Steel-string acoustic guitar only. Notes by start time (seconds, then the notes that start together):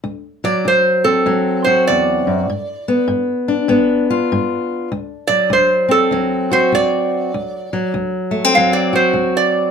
0.04 D2
0.44 F#3
0.65 D2
1.05 C4
1.26 D2 F#3
1.67 F#4
1.90 E2
2.27 F#2
2.50 G2
2.88 B3
3.08 G2
3.48 D4
3.68 G2 B3
4.10 F4
4.32 G2
4.92 D2
5.29 F#3
5.50 D2
5.89 C4
6.11 D2 F#3
6.51 F#4
6.72 D2
7.34 D2
7.73 F#3
7.94 D2
8.31 A3
8.44 C4
8.56 D2 F#3
8.93 F#4
9.13 D2